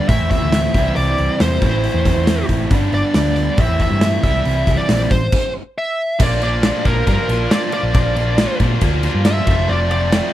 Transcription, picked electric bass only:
0, 0, Header, 1, 2, 480
1, 0, Start_track
1, 0, Tempo, 436364
1, 1061, Time_signature, 4, 2, 24, 8
1, 11363, End_track
2, 0, Start_track
2, 0, Title_t, "Picked electric bass"
2, 0, Program_c, 0, 34
2, 98, Note_on_c, 0, 45, 104
2, 191, Note_off_c, 0, 45, 0
2, 221, Note_on_c, 0, 40, 78
2, 405, Note_off_c, 0, 40, 0
2, 465, Note_on_c, 0, 38, 80
2, 739, Note_off_c, 0, 38, 0
2, 821, Note_on_c, 0, 36, 76
2, 1005, Note_off_c, 0, 36, 0
2, 1065, Note_on_c, 0, 36, 91
2, 1247, Note_off_c, 0, 36, 0
2, 1312, Note_on_c, 0, 36, 81
2, 1400, Note_off_c, 0, 36, 0
2, 1545, Note_on_c, 0, 40, 79
2, 1727, Note_off_c, 0, 40, 0
2, 1779, Note_on_c, 0, 33, 94
2, 2056, Note_off_c, 0, 33, 0
2, 2136, Note_on_c, 0, 40, 81
2, 2322, Note_off_c, 0, 40, 0
2, 2381, Note_on_c, 0, 40, 76
2, 2657, Note_off_c, 0, 40, 0
2, 2739, Note_on_c, 0, 33, 83
2, 2924, Note_off_c, 0, 33, 0
2, 2979, Note_on_c, 0, 31, 90
2, 3164, Note_off_c, 0, 31, 0
2, 3220, Note_on_c, 0, 31, 81
2, 3313, Note_off_c, 0, 31, 0
2, 3461, Note_on_c, 0, 38, 82
2, 3829, Note_off_c, 0, 38, 0
2, 3939, Note_on_c, 0, 33, 108
2, 4032, Note_off_c, 0, 33, 0
2, 4049, Note_on_c, 0, 40, 89
2, 4238, Note_off_c, 0, 40, 0
2, 4297, Note_on_c, 0, 43, 81
2, 4575, Note_off_c, 0, 43, 0
2, 4662, Note_on_c, 0, 36, 88
2, 4845, Note_off_c, 0, 36, 0
2, 4906, Note_on_c, 0, 36, 99
2, 5088, Note_off_c, 0, 36, 0
2, 5138, Note_on_c, 0, 36, 89
2, 5231, Note_off_c, 0, 36, 0
2, 5386, Note_on_c, 0, 34, 87
2, 5568, Note_off_c, 0, 34, 0
2, 5619, Note_on_c, 0, 33, 86
2, 5804, Note_off_c, 0, 33, 0
2, 6820, Note_on_c, 0, 34, 105
2, 7372, Note_off_c, 0, 34, 0
2, 7540, Note_on_c, 0, 34, 88
2, 7724, Note_off_c, 0, 34, 0
2, 7779, Note_on_c, 0, 43, 110
2, 7872, Note_off_c, 0, 43, 0
2, 8016, Note_on_c, 0, 34, 86
2, 8202, Note_off_c, 0, 34, 0
2, 8615, Note_on_c, 0, 34, 81
2, 8709, Note_off_c, 0, 34, 0
2, 8742, Note_on_c, 0, 34, 96
2, 9293, Note_off_c, 0, 34, 0
2, 9463, Note_on_c, 0, 46, 86
2, 9647, Note_off_c, 0, 46, 0
2, 9698, Note_on_c, 0, 38, 107
2, 9975, Note_off_c, 0, 38, 0
2, 10060, Note_on_c, 0, 43, 79
2, 10337, Note_off_c, 0, 43, 0
2, 10415, Note_on_c, 0, 29, 98
2, 10510, Note_off_c, 0, 29, 0
2, 10540, Note_on_c, 0, 29, 84
2, 10633, Note_off_c, 0, 29, 0
2, 10660, Note_on_c, 0, 29, 98
2, 11213, Note_off_c, 0, 29, 0
2, 11363, End_track
0, 0, End_of_file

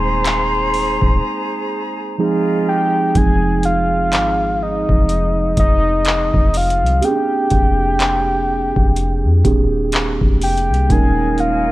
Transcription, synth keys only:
0, 0, Header, 1, 2, 480
1, 0, Start_track
1, 0, Key_signature, -4, "minor"
1, 0, Tempo, 967742
1, 1564, Time_signature, 4, 2, 24, 8
1, 5812, End_track
2, 0, Start_track
2, 0, Title_t, "Synth keys"
2, 0, Program_c, 0, 88
2, 0, Control_c, 0, 64, 127
2, 0, Note_on_c, 0, 56, 62
2, 0, Note_on_c, 0, 58, 59
2, 0, Note_on_c, 0, 60, 63
2, 0, Note_on_c, 0, 63, 65
2, 0, Note_on_c, 0, 68, 72
2, 1061, Note_off_c, 0, 56, 0
2, 1062, Note_off_c, 0, 58, 0
2, 1065, Note_off_c, 0, 60, 0
2, 1067, Note_off_c, 0, 63, 0
2, 1083, Note_on_c, 0, 53, 81
2, 1085, Note_off_c, 0, 68, 0
2, 1085, Note_on_c, 0, 56, 75
2, 1088, Note_on_c, 0, 60, 69
2, 1090, Note_on_c, 0, 63, 72
2, 1091, Control_c, 0, 64, 0
2, 1093, Note_on_c, 0, 68, 92
2, 1166, Control_c, 0, 64, 127
2, 1554, Note_off_c, 0, 53, 0
2, 1558, Note_off_c, 0, 56, 0
2, 1560, Note_on_c, 0, 53, 69
2, 1562, Note_off_c, 0, 60, 0
2, 1564, Note_on_c, 0, 56, 63
2, 1567, Note_off_c, 0, 63, 0
2, 1568, Note_off_c, 0, 68, 0
2, 1568, Note_on_c, 0, 60, 63
2, 1571, Control_c, 0, 64, 0
2, 1572, Note_on_c, 0, 63, 61
2, 1577, Note_on_c, 0, 68, 71
2, 1666, Control_c, 0, 64, 127
2, 3462, Note_off_c, 0, 53, 0
2, 3464, Note_off_c, 0, 56, 0
2, 3466, Note_off_c, 0, 60, 0
2, 3469, Note_off_c, 0, 63, 0
2, 3471, Note_off_c, 0, 68, 0
2, 3478, Note_on_c, 0, 67, 72
2, 3483, Note_on_c, 0, 58, 62
2, 3488, Note_on_c, 0, 60, 64
2, 3491, Control_c, 0, 64, 0
2, 3491, Note_on_c, 0, 61, 49
2, 3495, Note_on_c, 0, 68, 77
2, 3523, Note_on_c, 0, 62, 63
2, 3525, Note_off_c, 0, 61, 0
2, 3564, Control_c, 0, 64, 127
2, 4661, Note_off_c, 0, 67, 0
2, 4664, Note_off_c, 0, 58, 0
2, 4666, Note_off_c, 0, 60, 0
2, 4670, Note_off_c, 0, 68, 0
2, 4684, Note_off_c, 0, 62, 0
2, 4684, Note_on_c, 0, 67, 65
2, 4686, Note_on_c, 0, 58, 64
2, 4688, Note_on_c, 0, 60, 60
2, 4689, Note_on_c, 0, 62, 57
2, 4693, Note_on_c, 0, 68, 73
2, 5396, Note_off_c, 0, 58, 0
2, 5399, Note_on_c, 0, 56, 69
2, 5402, Note_on_c, 0, 58, 64
2, 5404, Note_off_c, 0, 67, 0
2, 5406, Note_off_c, 0, 60, 0
2, 5407, Note_off_c, 0, 62, 0
2, 5407, Note_on_c, 0, 61, 63
2, 5408, Note_off_c, 0, 68, 0
2, 5410, Note_on_c, 0, 63, 65
2, 5411, Control_c, 0, 64, 0
2, 5415, Note_on_c, 0, 70, 76
2, 5485, Control_c, 0, 64, 127
2, 5812, Note_off_c, 0, 56, 0
2, 5812, Note_off_c, 0, 58, 0
2, 5812, Note_off_c, 0, 61, 0
2, 5812, Note_off_c, 0, 63, 0
2, 5812, Note_off_c, 0, 70, 0
2, 5812, End_track
0, 0, End_of_file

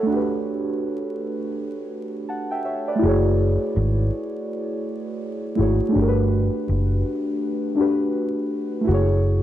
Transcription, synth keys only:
0, 0, Header, 1, 2, 480
1, 0, Start_track
1, 0, Tempo, 731707
1, 62, Time_signature, 4, 2, 24, 8
1, 6184, End_track
2, 0, Start_track
2, 0, Title_t, "Synth keys"
2, 0, Program_c, 0, 88
2, 0, Control_c, 0, 64, 127
2, 0, Note_on_c, 0, 69, 51
2, 0, Note_on_c, 0, 73, 57
2, 0, Note_on_c, 0, 76, 54
2, 0, Note_on_c, 0, 78, 56
2, 19, Note_on_c, 0, 57, 64
2, 42, Note_on_c, 0, 62, 56
2, 62, Note_on_c, 0, 66, 54
2, 69, Control_c, 0, 64, 0
2, 70, Note_off_c, 0, 76, 0
2, 72, Note_off_c, 0, 78, 0
2, 83, Note_on_c, 0, 67, 59
2, 104, Note_on_c, 0, 71, 66
2, 181, Control_c, 0, 64, 127
2, 197, Note_off_c, 0, 73, 0
2, 200, Note_off_c, 0, 69, 0
2, 1497, Note_off_c, 0, 71, 0
2, 1500, Note_on_c, 0, 81, 58
2, 1506, Note_on_c, 0, 78, 44
2, 1641, Note_off_c, 0, 81, 0
2, 1644, Note_off_c, 0, 78, 0
2, 1646, Note_on_c, 0, 79, 60
2, 1650, Note_on_c, 0, 76, 53
2, 1729, Note_off_c, 0, 76, 0
2, 1735, Note_off_c, 0, 79, 0
2, 1736, Note_on_c, 0, 76, 64
2, 1741, Note_on_c, 0, 73, 50
2, 1879, Note_off_c, 0, 76, 0
2, 1882, Note_off_c, 0, 73, 0
2, 1888, Note_on_c, 0, 74, 61
2, 1891, Note_on_c, 0, 71, 51
2, 1931, Note_off_c, 0, 57, 0
2, 1939, Note_on_c, 0, 57, 67
2, 1946, Note_off_c, 0, 62, 0
2, 1956, Note_off_c, 0, 66, 0
2, 1960, Note_on_c, 0, 64, 68
2, 1966, Note_off_c, 0, 67, 0
2, 1980, Note_on_c, 0, 66, 63
2, 1991, Control_c, 0, 64, 0
2, 2002, Note_on_c, 0, 68, 64
2, 2024, Note_on_c, 0, 73, 79
2, 2103, Control_c, 0, 64, 127
2, 2116, Note_off_c, 0, 74, 0
2, 2118, Note_off_c, 0, 71, 0
2, 3614, Note_off_c, 0, 57, 0
2, 3625, Note_off_c, 0, 64, 0
2, 3635, Note_off_c, 0, 66, 0
2, 3644, Note_on_c, 0, 57, 54
2, 3646, Note_off_c, 0, 68, 0
2, 3654, Note_on_c, 0, 64, 54
2, 3657, Note_off_c, 0, 73, 0
2, 3666, Note_on_c, 0, 66, 56
2, 3676, Note_on_c, 0, 68, 53
2, 3687, Note_on_c, 0, 73, 56
2, 3854, Note_off_c, 0, 57, 0
2, 3862, Note_on_c, 0, 57, 74
2, 3883, Note_on_c, 0, 62, 70
2, 3897, Note_off_c, 0, 66, 0
2, 3898, Note_off_c, 0, 64, 0
2, 3905, Note_on_c, 0, 66, 61
2, 3909, Note_off_c, 0, 68, 0
2, 3911, Control_c, 0, 64, 0
2, 3914, Note_off_c, 0, 73, 0
2, 3926, Note_on_c, 0, 67, 58
2, 3948, Note_on_c, 0, 70, 56
2, 3977, Note_off_c, 0, 70, 0
2, 3990, Note_on_c, 0, 71, 77
2, 4007, Control_c, 0, 64, 127
2, 5058, Note_off_c, 0, 57, 0
2, 5068, Note_off_c, 0, 62, 0
2, 5080, Note_off_c, 0, 66, 0
2, 5083, Note_on_c, 0, 57, 57
2, 5090, Note_off_c, 0, 67, 0
2, 5093, Note_on_c, 0, 62, 57
2, 5103, Note_on_c, 0, 66, 52
2, 5115, Note_on_c, 0, 67, 53
2, 5119, Note_off_c, 0, 71, 0
2, 5127, Note_on_c, 0, 71, 63
2, 5771, Note_off_c, 0, 57, 0
2, 5779, Note_on_c, 0, 57, 67
2, 5800, Note_on_c, 0, 64, 60
2, 5813, Note_off_c, 0, 66, 0
2, 5818, Note_off_c, 0, 62, 0
2, 5821, Note_on_c, 0, 66, 64
2, 5828, Note_off_c, 0, 67, 0
2, 5831, Control_c, 0, 64, 0
2, 5834, Note_off_c, 0, 71, 0
2, 5843, Note_on_c, 0, 68, 64
2, 5863, Note_on_c, 0, 73, 72
2, 5945, Control_c, 0, 64, 127
2, 6184, Note_off_c, 0, 57, 0
2, 6184, Note_off_c, 0, 64, 0
2, 6184, Note_off_c, 0, 66, 0
2, 6184, Note_off_c, 0, 68, 0
2, 6184, Note_off_c, 0, 73, 0
2, 6184, End_track
0, 0, End_of_file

